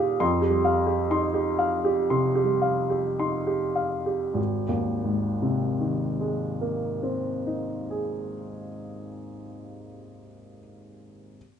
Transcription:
Already playing: A#2 G3 D#4 F5 D#6
0.00 G4
0.20 F2 C6
0.42 G4
0.49 G3
0.65 F5
0.87 G4
1.10 D#4 C6
1.34 G4
1.59 F5
1.85 G4
2.10 C3 C6
2.35 G4
2.44 G3
2.62 F5
2.90 G4
3.19 D#4 C6
3.47 G4
3.75 F5
4.06 G4
4.34 G#1
4.68 D#2
5.04 G#2
5.42 C3
5.80 D#3
6.20 G#3
6.61 A#3
7.03 C4
7.47 D#4
7.90 G#4

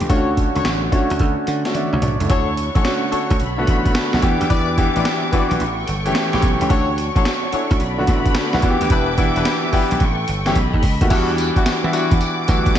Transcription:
Already playing: E3 A3 D4 G4
0.00 C#2, closed hi-hat
0.09 D2 D3 A3 C#4 D4 F4 F#4 A4 C#5, kick, closed hi-hat
0.17 F#4
0.37 kick, closed hi-hat
0.55 C#2 D4 F#4 A4 C#5, closed hi-hat
0.65 A1, snare, closed hi-hat
0.92 D3 A3 C#4 D4 F#4 A4 C#5, kick, closed hi-hat
1.10 D2, closed hi-hat
1.19 D2, kick, closed hi-hat
1.47 D3 F#5, closed hi-hat
1.65 D3 A3 C#4 F#4, snare, closed hi-hat
1.75 A4 D5 E5, closed hi-hat, high tom
1.93 D2 F#4 C#5, mid tom
2.02 B1 D5, closed hi-hat, mid tom
2.20 C#2 E4 A4, closed hi-hat, floor tom
2.29 D2 D4 F#4 A4 C#5 C#6, kick, closed hi-hat
2.57 closed hi-hat
2.75 A1 D4 F#4 A4 C#5, kick, closed hi-hat
2.85 D3 A3 C#4 F#4, snare, closed hi-hat
3.12 D4 F#4 A4 C#5, muted slap bass stroke, closed hi-hat
3.30 D2, kick, closed hi-hat
3.40 B1 A4 B5, closed hi-hat
3.58 D3 A3 B3 F#4
3.67 A1, kick, closed hi-hat
3.85 kick, closed hi-hat
3.95 snare, closed hi-hat
4.13 B1 D3 A3 B3 F#4, snare
4.22 E2 E3 B3 D4 G4 E5 D6, kick, closed hi-hat
4.41 D2, closed hi-hat
4.50 E2 E4 G4 B4 D5, kick, closed hi-hat
4.77 E3 B3 D4 G4, kick, closed hi-hat
4.95 A1 E4 G4 B4 D5, closed hi-hat
5.05 snare, closed hi-hat
5.32 E3 B3 D4 E4 F#4 G4 B4 D5, muted slap bass stroke, kick, closed hi-hat
5.51 B1, closed hi-hat
5.60 A1 A4 G5 C#6, closed hi-hat
5.87 G1, closed hi-hat
6.05 E3 A3 C#4 G4, closed hi-hat
6.15 snare, closed hi-hat
6.33 A1 E4 G4 A4 C#5, snare
6.42 B1, kick, closed hi-hat
6.60 C#2 E3 A3 C#4 G4, closed hi-hat
6.70 D2 D4 F#4 A4 C#5 D5 C#6, kick, closed hi-hat
6.98 closed hi-hat
7.15 A1 D4 F#4 A4 C#5, kick, closed hi-hat
7.25 snare, closed hi-hat
7.44 F#4 C#5
7.52 D4 E4 F#4 A4 C#5, muted slap bass stroke, closed hi-hat
7.71 D2 C#4 F#4, kick, closed hi-hat
7.80 B1 A4 B5, closed hi-hat
7.98 D3 A3 B3 F#4
8.07 A1, kick, closed hi-hat
8.26 kick, closed hi-hat
8.35 snare, closed hi-hat
8.53 B1 D3 A3 B3 F#4, snare
8.62 E2 E3 B3 D4 F#4 G4 E5 D6, kick, closed hi-hat
8.70 G4
8.81 D2, closed hi-hat
8.90 E1 D4 E4 G4 B4, kick, closed hi-hat
9.18 E3 B3 D4 E4, kick, closed hi-hat
9.36 E1 D4 E4 G4 B4, closed hi-hat
9.45 snare, closed hi-hat
9.72 E3 B3 D4 E4 G4 B4, muted slap bass stroke, kick, open hi-hat
9.91 B1, closed hi-hat
10.00 A1 A4 G5 C#6, kick, closed hi-hat
10.28 G1, closed hi-hat
10.46 E3 A3 C#4 G4, snare, closed hi-hat
10.55 B1 A4 D#5 B5, kick, closed hi-hat
10.73 D#2, kick
10.83 C#2, kick, open hi-hat
11.01 D#2 D#3 A3 B3 F#4, kick, closed hi-hat
11.10 E2 E3 G3 B3 D4 E4 F#4 F#5 D6, kick, closed hi-hat, crash, tambourine
11.38 closed hi-hat, tambourine
11.56 G3 D4 E4 F#4, kick, closed hi-hat
11.66 muted slap bass stroke, snare, closed hi-hat, tambourine
11.83 E3 G3 B3 D4 E4
11.93 G3 D4 E4 F#4, closed hi-hat, tambourine
12.11 E2, kick, closed hi-hat
12.21 closed hi-hat, tambourine
12.48 D2 E3 G3 B3 D4 F#4, kick, closed hi-hat, tambourine
12.66 kick, closed hi-hat
12.75 snare, closed hi-hat, tambourine

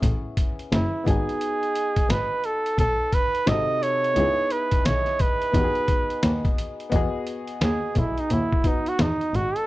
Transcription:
Already playing: B3 C#4 E4 G#4
0.03 A1, kick, closed hi-hat
0.37 kick, closed hi-hat
0.59 closed hi-hat
0.72 F#1 E4, snare, closed hi-hat
1.04 G#1 B3 D#4 G#4, kick, closed hi-hat
1.08 F#4 G#5
1.29 closed hi-hat
1.41 closed hi-hat
1.63 closed hi-hat
1.75 closed hi-hat
1.96 kick, closed hi-hat
2.10 G#1 B4, snare, closed hi-hat
2.44 A4, closed hi-hat
2.66 closed hi-hat
2.78 B1 A4, kick, closed hi-hat
3.12 B4, kick, closed hi-hat
3.35 closed hi-hat
3.46 G#1 C3 D#4 F#4 A4 D#5, snare, closed hi-hat
3.83 C#5, closed hi-hat
4.04 closed hi-hat
4.14 C#2 B3 D#4, closed hi-hat
4.18 E4 G#4
4.50 B4, closed hi-hat
4.71 kick, closed hi-hat
4.85 B1 C#5, snare, closed hi-hat
5.06 snare, closed hi-hat
5.19 B4, kick, closed hi-hat
5.42 closed hi-hat
5.52 E2 B3 D#4 F#4, kick, closed hi-hat
5.57 G4
5.64 G#4
5.75 closed hi-hat
5.88 kick, closed hi-hat
6.10 closed hi-hat
6.23 D#2, snare, closed hi-hat
6.45 kick, closed hi-hat
6.58 closed hi-hat
6.80 closed hi-hat
6.90 E2 B3 D#5, kick, closed hi-hat
6.94 F#4 G#4
7.27 closed hi-hat
7.47 closed hi-hat
7.61 D#2 G#4, snare, closed hi-hat
7.95 B1 E4, kick, closed hi-hat
8.18 D#4, closed hi-hat
8.30 D#2 E4, closed hi-hat
8.52 kick
8.64 B3 D#4 F#4 B4, kick, closed hi-hat
8.86 F#4, closed hi-hat
8.99 E2 D#4, snare, closed hi-hat
9.21 closed hi-hat
9.34 G#1 F#4, closed hi-hat
9.56 A4, closed hi-hat

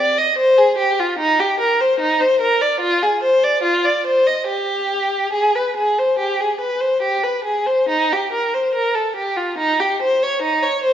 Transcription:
Already playing: D5
0.18 D#5
0.38 C5
0.58 G#4
0.78 G4
0.99 F4
1.18 D#4
1.40 G4
1.60 A#4
1.81 C5
2.00 D#4
2.20 C5
2.41 A#4
2.61 D5
2.80 F4
3.03 G#4
3.23 C5
3.44 D5
3.63 F4
3.85 D5
4.07 C5
4.27 D#5
4.48 G4
5.33 G#4
5.56 B4
5.77 G#4
5.99 C5
6.19 G4
6.40 G#4
6.61 B4
6.81 C5
7.02 G4
7.23 B4
7.44 G#4
7.66 C5
7.89 D#4
8.12 G4
8.32 A#4
8.54 C5
8.75 A#4
8.95 A4
9.16 G4
9.37 F4
9.58 D#4
9.80 G4
10.02 C5
10.23 C#5
10.42 D#4
10.63 C#5
10.83 C5

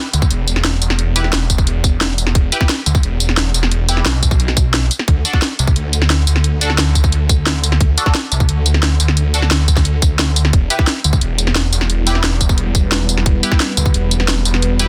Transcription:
0.13 D2, closed hi-hat, tambourine
0.22 kick, tambourine
0.30 E1, closed hi-hat
0.48 closed hi-hat, tambourine
0.56 snare
0.65 snare, closed hi-hat
0.82 E1, open hi-hat, tambourine
0.90 snare
0.99 closed hi-hat
1.16 E4 G4 B4, closed hi-hat, tambourine
1.24 snare
1.33 E1, snare, closed hi-hat
1.50 kick, closed hi-hat, tambourine
1.58 kick, tambourine
1.67 closed hi-hat
1.84 kick, closed hi-hat, tambourine
2.01 snare, closed hi-hat
2.18 open hi-hat, tambourine
2.27 snare
2.35 E1, kick, closed hi-hat
2.52 E4 G4 B4, closed hi-hat, tambourine
2.61 kick, snare
2.69 snare, closed hi-hat
2.86 D2, closed hi-hat, tambourine
2.95 kick, tambourine
3.03 E1, closed hi-hat
3.20 closed hi-hat, tambourine
3.29 snare
3.37 snare, closed hi-hat
3.54 E1, open hi-hat, tambourine
3.63 snare
3.71 closed hi-hat
3.89 E4 G4 B4, closed hi-hat, tambourine
3.97 snare
4.06 B1, snare, closed hi-hat
4.23 kick, closed hi-hat, tambourine
4.31 kick, tambourine
4.40 closed hi-hat
4.48 snare
4.57 kick, closed hi-hat, tambourine
4.74 snare, closed hi-hat
4.91 open hi-hat, tambourine
4.99 snare
5.08 D2, kick, closed hi-hat
5.25 D4 F#4 A4, closed hi-hat, tambourine
5.33 kick, snare
5.42 snare, closed hi-hat
5.59 C2, closed hi-hat, tambourine
5.67 kick, tambourine
5.76 D2, closed hi-hat
5.93 closed hi-hat, tambourine
6.02 snare
6.10 snare, closed hi-hat
6.27 D2, open hi-hat, tambourine
6.36 snare
6.44 closed hi-hat
6.61 D4 F#4 A4, closed hi-hat, tambourine
6.70 snare
6.78 D2, snare, closed hi-hat
6.95 kick, closed hi-hat, tambourine
7.04 kick, tambourine
7.12 closed hi-hat
7.29 kick, closed hi-hat, tambourine
7.46 snare, closed hi-hat
7.64 open hi-hat, tambourine
7.72 snare
7.81 D2, kick, closed hi-hat
7.98 D4 F#4 A4, closed hi-hat, tambourine
8.06 kick, snare
8.15 snare, closed hi-hat
8.32 C2, closed hi-hat, tambourine
8.40 kick, tambourine
8.49 D2, closed hi-hat
8.66 closed hi-hat, tambourine
8.74 snare
8.83 snare, closed hi-hat
9.00 D2, open hi-hat, tambourine
9.08 snare
9.17 closed hi-hat
9.34 D4 F#4 A4, closed hi-hat, tambourine
9.42 snare
9.51 D2, snare, closed hi-hat
9.68 kick, closed hi-hat, tambourine
9.77 kick, snare, tambourine
9.85 closed hi-hat
10.02 D2, kick, closed hi-hat, tambourine
10.19 snare, closed hi-hat
10.36 open hi-hat, tambourine
10.45 snare
10.53 E1 G3 B3 E4 B4, kick, closed hi-hat
10.70 E4 G4 B4, closed hi-hat, tambourine
10.79 kick, snare
10.87 snare, closed hi-hat
11.04 D2, closed hi-hat, tambourine
11.13 kick, tambourine
11.21 E1, closed hi-hat
11.38 closed hi-hat, tambourine
11.47 snare
11.55 snare, closed hi-hat
11.73 E1, open hi-hat, tambourine
11.81 snare
11.90 closed hi-hat
12.07 E4 G4 B4, closed hi-hat, tambourine
12.15 snare
12.24 E1, snare, closed hi-hat
12.41 kick, closed hi-hat, tambourine
12.49 kick, tambourine
12.58 closed hi-hat
12.75 kick, closed hi-hat, tambourine
12.92 snare, closed hi-hat
13.09 open hi-hat, tambourine
13.17 snare
13.26 E1 F#4, kick, closed hi-hat
13.43 E4 G4 B4, closed hi-hat, tambourine
13.52 kick, snare
13.60 snare, closed hi-hat
13.77 D2, closed hi-hat, tambourine
13.86 kick, tambourine
13.94 E1, closed hi-hat
14.11 closed hi-hat, tambourine
14.20 snare
14.28 snare, closed hi-hat
14.45 E1, open hi-hat, tambourine
14.54 snare
14.62 closed hi-hat
14.79 E4 G4 B4, closed hi-hat, tambourine

